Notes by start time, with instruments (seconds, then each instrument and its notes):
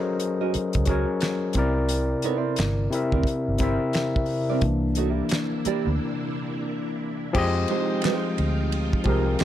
Already playing: tine electric piano F#3 C#4 G#4 A4 A#4 C5 D#5
0.20 closed hi-hat
0.41 nylon-string guitar C#4 F#4 A#4 D#5
0.54 muted fingered electric bass stroke, closed hi-hat
0.73 fingered electric bass C#2, kick, closed hi-hat
0.85 tine electric piano F#3 C#4 G#4, nylon-string guitar C#4 F#4 A#4 D#5, kick, closed hi-hat
0.90 tine electric piano A#4 C#5
1.21 snare, clap, closed hi-hat
1.53 fingered electric bass C2, tine electric piano C3 C4 E4, kick, closed hi-hat
1.58 tine electric piano A#4 D5
1.89 closed hi-hat
2.22 nylon-string guitar B3 D#4 A4 C#5, closed hi-hat
2.37 nylon-string guitar C4 E4 A#4 D5
2.56 fingered electric bass G1, snare, clap, closed hi-hat
2.90 tine electric piano C3 C4 E4 A#4, closed hi-hat
2.95 tine electric piano E5
3.12 fingered electric bass D2, nylon-string guitar C4 E4 A#4 D5, kick
3.23 muted fingered electric bass stroke, kick, closed hi-hat
3.48 fingered electric bass G1
3.58 tine electric piano C3 C4 E4 A#4, nylon-string guitar C4 E4 A#4, kick, closed hi-hat
3.62 nylon-string guitar D5, tine electric piano E5
3.93 snare, clap, closed hi-hat
4.16 kick
4.26 open hi-hat
4.50 nylon-string guitar C4 E4 A#4 D5
4.61 fingered electric bass C2, string machine C3 A#3 D4 E4, tine electric piano E3 A#3 D4, kick, closed hi-hat
4.95 nylon-string guitar A3 D#4 F#4 C#5, closed hi-hat
5.10 nylon-string guitar A#3 E4 G4 D5
5.29 muted nylon-string guitar stroke, snare, clap, closed hi-hat
5.65 nylon-string guitar A#3 E4 G4 D5, muted fingered electric bass stroke, closed hi-hat
5.87 fingered electric bass D2
7.33 fingered electric bass F2, tine electric piano F3 G#3 C4 G4, string machine F3 D#4 F4 G5, kick, crash
7.38 tine electric piano D#5
7.68 nylon-string guitar G#3 D#4 G4 C5, ride
8.02 nylon-string guitar G#3 D#4 G4 C5, snare, clap, ride
8.38 fingered electric bass D2, ride
8.72 ride
8.93 kick
9.04 fingered electric bass C2, tine electric piano F3 C4 G4 G#4, nylon-string guitar G#3 D#4 G4 C5, kick, ride
9.09 tine electric piano A#4
9.39 nylon-string guitar G#3 D#4, clap, ride